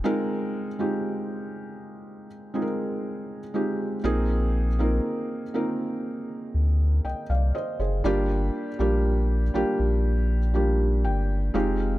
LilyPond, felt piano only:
\new Staff \with { instrumentName = "Felt piano" } { \time 4/4 \key bes \mixolydian \tempo 4 = 60 << { r1 | r2. <ees'' g''>16 <d'' f''>16 <c'' ees''>16 <aes' c''>16~ | <aes' c''>16 r2 r8. g''8 f''8 | } \\ { <aes c' ees' f' bes'>8. <aes c' ees' f' g'>4. r16 <aes c' ees' f' aes' bes'>8. r16 <aes c' ees' f' g'>8 | <bes c' ees' f' aes'>8. <bes c' ees' f' bes'>8. <bes c' ees' f' bes'>4.~ <bes c' ees' f' bes'>16 r8. | <g bes d' f' g'>8. <g bes d' f' g'>8. <g bes d' f' g'>8. r16 <g bes d' f' g'>4 <aes c' ees' f' g'>8 | } >> }